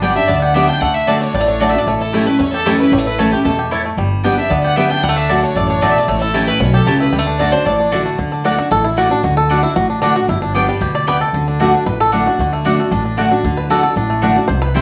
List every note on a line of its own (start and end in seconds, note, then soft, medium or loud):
0.00 0.16 G1 medium
0.00 0.26 G2 medium
0.00 0.15 G3 medium
0.00 0.39 G3 medium
0.00 0.11 B3 medium
0.00 0.15 B3 medium
0.00 0.15 D4 medium
0.00 0.16 D4 medium
0.00 0.11 G4 medium
0.00 0.14 G4 loud
0.00 0.11 D5 loud
0.00 0.11 G5 loud
0.15 0.52 D4 medium
0.15 0.29 D4 soft
0.15 0.28 G4 medium
0.15 0.29 E5 medium
0.15 0.30 E5 loud
0.28 0.69 D2 medium
0.28 0.79 D3 medium
0.28 0.54 B3 medium
0.28 0.41 D5 medium
0.28 0.42 D5 medium
0.42 0.79 G4 medium
0.42 0.56 F#5 loud
0.42 0.55 F#5 medium
0.55 0.68 G3 medium
0.55 0.64 B3 loud
0.55 0.68 B3 medium
0.55 0.82 B3 medium
0.55 0.68 D4 medium
0.55 0.64 G4 medium
0.55 0.67 G4 loud
0.55 0.64 D5 loud
0.55 0.70 E5 medium
0.55 0.68 E5 medium
0.55 0.64 G5 loud
0.68 0.82 D4 medium
0.68 0.81 G4 medium
0.68 0.83 G5 loud
0.68 0.81 G5 loud
0.81 1.22 D2 medium
0.81 1.06 D3 medium
0.81 1.34 A3 medium
0.81 0.96 F#5 loud
0.81 0.94 F#5 medium
0.94 1.09 E5 medium
0.94 1.08 E5 medium
1.07 1.33 D3 medium
1.07 1.17 A3 medium
1.07 1.33 A3 medium
1.07 1.20 D4 medium
1.07 1.33 D4 loud
1.07 1.17 F#4 medium
1.07 1.34 F#4 loud
1.07 1.20 D5 medium
1.07 1.17 D5 medium
1.07 1.21 D5 medium
1.07 1.17 A5 loud
1.21 1.47 D4 medium
1.21 1.34 C#5 medium
1.21 1.36 C#5 medium
1.34 1.75 A1 loud
1.34 1.85 A2 medium
1.34 1.40 G3 medium
1.34 1.46 D5 medium
1.34 1.47 D5 medium
1.40 1.60 A3 medium
1.46 1.73 D4 medium
1.46 1.60 C#5 medium
1.46 1.63 C#5 loud
1.60 1.74 D3 medium
1.60 1.69 A3 medium
1.60 1.87 A3 medium
1.60 1.74 A3 medium
1.60 1.74 D4 medium
1.60 1.70 F#4 medium
1.60 1.73 F#4 medium
1.60 1.69 D5 medium
1.60 1.70 D5 medium
1.60 1.71 D5 medium
1.60 1.70 A5 medium
1.69 1.78 E5 medium
1.69 1.80 E5 loud
1.74 1.87 D4 medium
1.74 1.86 F#4 medium
1.78 1.88 D5 medium
1.78 1.89 D5 medium
1.87 2.27 A1 medium
1.87 2.37 A2 medium
1.87 2.13 A3 medium
1.87 2.00 C#5 medium
1.87 2.01 C#5 medium
2.00 2.26 E4 medium
2.00 2.15 A4 medium
2.00 2.14 A4 medium
2.13 2.26 E3 medium
2.13 2.22 A3 medium
2.13 2.27 A3 loud
2.13 2.51 A3 medium
2.13 2.27 C#4 loud
2.13 2.23 E4 loud
2.13 2.25 E4 loud
2.13 2.28 G4 medium
2.13 2.27 G4 medium
2.13 2.23 C#5 loud
2.13 2.23 A5 loud
2.26 2.40 C#4 soft
2.26 2.39 E4 medium
2.26 2.64 E4 soft
2.26 2.40 B4 medium
2.26 2.41 B4 medium
2.39 2.80 E2 medium
2.39 2.90 E2 medium
2.39 2.66 C#4 medium
2.39 2.52 C#5 loud
2.39 2.54 C#5 medium
2.52 2.90 G4 medium
2.52 2.67 A4 loud
2.52 2.66 A4 medium
2.65 2.79 E3 medium
2.65 2.75 A3 medium
2.65 2.79 A3 medium
2.65 3.04 C#4 medium
2.65 2.80 C#4 loud
2.65 2.75 E4 medium
2.65 2.78 E4 medium
2.65 2.78 G4 medium
2.65 2.80 G4 medium
2.65 2.75 C#5 loud
2.65 2.75 A5 loud
2.79 2.93 C#4 medium
2.79 2.92 E4 medium
2.79 3.05 E4 medium
2.79 2.94 B4 medium
2.79 2.92 B4 medium
2.92 3.32 A1 medium
2.92 3.43 A2 medium
2.92 2.98 G3 medium
2.92 3.05 C#5 medium
2.98 3.18 A3 medium
3.05 3.43 E4 medium
3.05 3.18 B4 medium
3.05 3.20 B4 medium
3.18 3.32 E3 medium
3.18 3.28 A3 medium
3.18 3.44 A3 medium
3.18 3.32 A3 loud
3.18 3.32 C#4 medium
3.18 3.28 E4 loud
3.18 3.31 E4 medium
3.18 3.32 A4 medium
3.18 3.31 A4 medium
3.18 3.28 C#5 loud
3.18 3.28 A5 loud
3.31 3.46 C#4 soft
3.31 3.45 E4 medium
3.31 3.44 G4 medium
3.31 3.58 G4 soft
3.44 3.85 E2 loud
3.44 3.70 B2 loud
3.44 3.82 A3 medium
3.44 3.53 A4 medium
3.44 3.57 A4 medium
3.59 3.95 G4 medium
3.71 3.97 A2 medium
3.71 3.80 A3 medium
3.71 3.81 E4 loud
3.71 3.98 E4 medium
3.71 3.81 C#5 loud
3.71 3.81 A5 loud
3.85 3.98 A3 medium
3.97 4.38 G1 medium
3.97 4.48 G2 medium
3.97 4.23 G3 medium
4.24 4.37 G3 medium
4.24 4.61 G3 medium
4.24 4.33 B3 loud
4.24 4.37 B3 loud
4.24 4.37 D4 loud
4.24 4.33 G4 medium
4.24 4.36 G4 loud
4.24 4.33 D5 medium
4.24 4.33 G5 loud
4.37 4.74 D4 soft
4.37 4.51 D4 medium
4.37 4.50 G4 medium
4.37 4.51 E5 loud
4.37 4.50 E5 medium
4.50 4.91 D2 loud
4.50 5.01 D3 medium
4.50 4.76 B3 medium
4.50 4.63 D5 medium
4.50 4.64 D5 medium
4.64 5.01 G4 medium
4.64 4.78 F#5 loud
4.64 4.77 F#5 medium
4.76 4.89 G3 medium
4.76 4.86 B3 loud
4.76 4.90 B3 medium
4.76 5.03 B3 medium
4.76 4.90 D4 medium
4.76 4.86 G4 medium
4.76 4.89 G4 medium
4.76 4.86 D5 medium
4.76 4.92 E5 medium
4.76 4.90 E5 medium
4.76 4.86 G5 loud
4.90 5.03 D4 medium
4.90 5.03 G4 medium
4.90 5.03 G5 medium
4.90 5.05 G5 loud
5.03 5.43 D2 loud
5.03 5.28 D3 medium
5.03 5.09 G3 medium
5.03 5.16 F#5 medium
5.03 5.18 F#5 medium
5.09 5.29 A3 medium
5.16 5.29 D4 medium
5.16 5.30 E5 medium
5.16 5.31 E5 loud
5.29 5.54 D3 medium
5.29 5.38 A3 medium
5.29 5.55 A3 medium
5.29 5.42 D4 medium
5.29 5.55 D4 loud
5.29 5.38 F#4 medium
5.29 5.55 F#4 loud
5.29 5.42 D5 medium
5.29 5.39 D5 medium
5.29 5.43 D5 medium
5.29 5.39 A5 loud
5.43 5.69 D4 medium
5.43 5.57 C#5 medium
5.43 5.56 C#5 medium
5.55 5.96 A1 loud
5.55 5.81 F#2 medium
5.55 5.82 A3 medium
5.55 5.68 D5 loud
5.55 5.69 D5 medium
5.69 5.94 D4 medium
5.69 5.83 C#5 loud
5.69 5.82 C#5 medium
5.81 6.07 B2 medium
5.81 5.91 A3 loud
5.81 6.08 A3 medium
5.81 5.91 F#4 medium
5.81 5.91 D5 medium
5.81 5.91 D5 loud
5.81 5.91 A5 loud
5.90 6.00 E5 medium
5.90 5.99 E5 medium
5.96 6.08 D4 medium
5.96 6.09 D5 medium
5.96 6.08 D5 medium
6.08 6.48 A1 medium
6.08 6.58 A2 medium
6.08 6.34 A3 medium
6.08 6.20 C#5 loud
6.08 6.22 C#5 medium
6.21 6.47 E4 medium
6.21 6.35 A4 medium
6.21 6.34 A4 medium
6.34 6.59 E3 loud
6.34 6.43 A3 medium
6.34 6.77 A3 medium
6.34 6.60 A3 loud
6.34 6.60 C#4 loud
6.34 6.43 E4 loud
6.34 6.60 E4 loud
6.34 6.49 G4 medium
6.34 6.47 G4 medium
6.34 6.44 C#5 loud
6.34 6.44 A5 loud
6.47 6.84 E4 medium
6.47 6.60 B4 medium
6.47 6.62 B4 medium
6.60 6.83 B1 loud
6.60 6.86 B2 loud
6.60 6.85 C#4 medium
6.60 6.74 C#5 medium
6.60 6.73 C#5 medium
6.73 7.11 G4 medium
6.73 6.86 A4 medium
6.73 6.88 A4 medium
6.86 7.09 C#2 medium
6.86 7.12 C#3 loud
6.86 6.96 A3 loud
6.86 7.13 C#4 medium
6.86 6.96 E4 medium
6.86 7.00 G4 medium
6.86 6.99 G4 medium
6.86 6.96 C#5 loud
6.86 6.96 A5 loud
7.00 7.13 E4 medium
7.00 7.12 B4 medium
7.12 7.53 D2 medium
7.12 7.38 D3 medium
7.12 7.18 G3 medium
7.18 7.38 A3 medium
7.27 7.52 D4 medium
7.39 7.52 D3 loud
7.39 7.49 A3 medium
7.39 7.65 A3 medium
7.39 7.53 A3 medium
7.39 7.53 D4 loud
7.39 7.49 F#4 medium
7.39 7.51 F#4 loud
7.39 7.54 D5 loud
7.39 7.53 D5 medium
7.39 7.49 D5 medium
7.39 7.49 A5 loud
7.52 7.79 D4 medium
7.52 7.66 D4 medium
7.52 7.65 F#4 medium
7.52 7.67 C5 loud
7.52 7.66 C5 medium
7.65 8.06 A1 loud
7.65 8.16 A2 loud
7.65 8.03 A3 medium
7.65 7.92 D5 medium
7.80 7.91 D4 medium
7.91 8.17 D3 medium
7.91 8.01 A3 medium
7.91 8.17 A3 medium
7.91 8.19 D4 medium
7.91 8.18 D4 medium
7.91 8.01 F#4 loud
7.91 8.18 F#4 medium
7.91 8.01 D5 medium
7.91 8.01 A5 medium
8.06 8.18 A3 medium
8.18 8.58 D2 medium
8.18 8.43 D3 medium
8.18 8.87 D3 medium
8.32 8.84 D4 medium
8.44 8.57 D3 medium
8.44 8.54 A3 medium
8.44 8.58 A3 medium
8.44 8.58 D4 loud
8.44 8.54 F#4 medium
8.44 8.56 F#4 medium
8.44 8.54 D5 medium
8.44 8.58 D5 loud
8.44 8.54 F#5 loud
8.57 8.71 D4 medium
8.57 8.70 F#4 medium
8.57 8.71 F#4 medium
8.71 9.11 A1 loud
8.71 9.21 A2 loud
8.71 8.85 A4 loud
8.84 8.98 E4 medium
8.96 9.10 D3 medium
8.96 9.06 A3 medium
8.96 9.10 A3 medium
8.96 9.10 D4 medium
8.96 9.06 F#4 loud
8.96 9.11 F#4 loud
8.96 9.08 F#4 medium
8.96 9.07 D5 loud
8.96 9.07 F#5 loud
9.10 9.24 D4 medium
9.10 9.23 F#4 medium
9.23 9.64 D2 loud
9.23 9.48 D3 medium
9.23 9.36 F#4 medium
9.37 9.61 A4 loud
9.49 9.62 D3 medium
9.49 9.59 A3 loud
9.49 9.63 A3 medium
9.49 9.90 D4 medium
9.49 9.63 D4 loud
9.49 9.59 F#4 medium
9.49 9.61 F#4 loud
9.49 9.59 D5 loud
9.49 9.59 F#5 loud
9.63 9.76 D4 soft
9.63 9.75 E4 medium
9.63 9.75 F#4 medium
9.76 10.16 A1 loud
9.76 10.26 A2 medium
9.76 9.89 F#4 medium
9.90 10.01 D4 medium
10.02 10.15 D3 medium
10.02 10.11 A3 medium
10.02 10.15 A3 medium
10.02 10.16 D4 medium
10.02 10.16 D4 loud
10.02 10.11 F#4 medium
10.02 10.14 F#4 medium
10.02 10.12 D5 loud
10.02 10.12 F#5 loud
10.15 10.29 D4 medium
10.15 10.28 F#4 medium
10.15 10.29 F#4 medium
10.28 10.69 G1 loud
10.28 10.79 G2 medium
10.28 10.42 E4 medium
10.42 10.54 D4 medium
10.54 10.68 D3 medium
10.54 10.68 G3 loud
10.54 10.64 B3 medium
10.54 10.68 B3 loud
10.54 11.47 D4 medium
10.54 10.64 G4 loud
10.54 10.67 G4 loud
10.54 10.64 D5 loud
10.54 10.64 G5 loud
10.68 11.05 G3 medium
10.68 10.82 B3 medium
10.68 10.81 G4 soft
10.81 11.21 D2 loud
10.81 11.06 B2 loud
10.81 11.18 G4 medium
10.95 11.08 D5 loud
11.07 11.33 C3 medium
11.07 11.16 B3 medium
11.07 11.16 G4 loud
11.07 11.21 B4 loud
11.07 11.17 D5 loud
11.07 11.17 G5 loud
11.21 11.88 A4 medium
11.33 11.74 D2 medium
11.33 12.74 D3 medium
11.33 11.59 D3 medium
11.48 11.74 D4 medium
11.60 11.73 D3 loud
11.60 11.69 A3 medium
11.60 12.52 A3 medium
11.60 11.73 A3 medium
11.60 11.74 D4 medium
11.60 11.69 F#4 loud
11.60 11.72 F#4 loud
11.60 11.69 D5 loud
11.60 11.69 F#5 medium
11.74 11.86 D4 medium
11.74 11.87 D4 soft
11.74 11.86 F#4 medium
11.86 12.26 A1 loud
11.86 12.37 A2 medium
11.86 12.00 B4 loud
12.00 12.13 A4 loud
12.12 12.26 D3 medium
12.12 12.21 A3 medium
12.12 12.26 A3 medium
12.12 12.65 D4 medium
12.12 12.26 D4 medium
12.12 12.22 F#4 medium
12.12 12.25 F#4 medium
12.12 12.22 D5 loud
12.12 12.22 F#5 medium
12.26 12.40 D4 medium
12.26 12.39 F#4 medium
12.38 12.79 D2 medium
12.38 12.64 D3 medium
12.38 12.52 F#4 medium
12.53 12.78 A3 medium
12.65 12.78 D3 medium
12.65 12.74 A3 loud
12.65 12.78 A3 medium
12.65 12.90 D4 medium
12.65 12.79 D4 medium
12.65 12.74 F#4 medium
12.65 12.77 F#4 medium
12.65 12.74 D5 medium
12.65 12.74 F#5 loud
12.79 13.16 A3 medium
12.79 12.92 D4 medium
12.79 12.91 F#4 medium
12.91 13.31 A1 loud
12.91 13.42 A2 loud
12.91 13.04 D4 medium
13.05 13.17 D4 medium
13.17 13.31 D3 medium
13.17 13.27 A3 medium
13.17 13.31 A3 medium
13.17 13.30 D4 medium
13.17 13.31 D4 medium
13.17 13.27 F#4 loud
13.17 13.30 F#4 medium
13.17 13.27 D5 loud
13.17 13.27 F#5 loud
13.31 13.57 D4 medium
13.31 13.44 D4 medium
13.31 13.43 F#4 medium
13.44 13.84 D2 medium
13.44 13.81 D3 medium
13.44 13.69 D3 loud
13.57 13.70 B4 medium
13.70 13.83 D3 loud
13.70 13.79 A3 medium
13.70 13.83 A3 medium
13.70 13.84 D4 loud
13.70 13.79 F#4 medium
13.70 13.82 F#4 loud
13.70 13.82 A4 loud
13.70 13.80 D5 medium
13.70 13.80 F#5 loud
13.83 13.97 D4 soft
13.83 13.96 F#4 medium
13.83 13.96 A4 medium
13.96 14.36 A1 loud
13.96 14.46 A2 medium
13.96 14.22 D4 medium
14.10 14.47 A3 medium
14.22 14.35 D3 medium
14.22 14.31 A3 loud
14.22 14.36 A3 loud
14.22 14.35 D4 medium
14.22 14.36 D4 medium
14.22 14.32 F#4 loud
14.22 14.35 F#4 medium
14.22 14.32 D5 medium
14.22 14.32 F#5 loud
14.36 14.49 D4 medium
14.36 14.50 D4 medium
14.36 14.48 F#4 medium
14.48 14.81 C2 medium
14.48 14.81 C3 loud
14.48 14.61 C5 loud
14.62 14.75 B4 loud
14.74 14.81 E3 medium
14.74 14.81 G3 loud
14.74 14.81 C4 loud
14.74 14.81 E4 loud
14.74 14.81 E4 medium
14.74 14.81 E4 loud
14.74 14.81 C5 loud
14.74 14.81 G5 loud